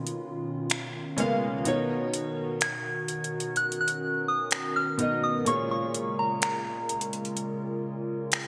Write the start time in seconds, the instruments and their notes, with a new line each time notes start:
Already playing: analog synth pad B2 D#3 C#4 F4, synth bell B5
0.07 closed hi-hat
0.70 finger snap, closed hi-hat
1.16 grand piano C#3 G#3 A#3 B3 F4 F5, closed hi-hat
1.64 grand piano B2 B3 D#4 A#4 C#5, analog synth pad F#4 A#4, closed hi-hat
2.14 closed hi-hat
2.61 synth bell G#6, finger snap, closed hi-hat
3.08 closed hi-hat
3.24 closed hi-hat
3.40 closed hi-hat
3.56 analog synth pad C#4, synth bell F#6, closed hi-hat
3.72 closed hi-hat
3.81 synth bell F#6
3.88 closed hi-hat
4.28 synth bell D#6
4.51 finger snap, closed hi-hat
4.76 synth bell F6
4.97 grand piano B2 B3 D#4 A#4 D#5, closed hi-hat
5.24 synth bell D#6
5.45 grand piano A#2 A#3 F4 G#4 C#5, analog synth pad C#3 G#3 F4, synth bell C#6, closed hi-hat
5.71 synth bell C#6
5.94 closed hi-hat
6.19 synth bell A#5
6.42 synth bell A#5, finger snap, closed hi-hat
6.89 closed hi-hat
7.01 closed hi-hat
7.13 closed hi-hat
7.25 closed hi-hat
7.37 closed hi-hat
8.32 finger snap, closed hi-hat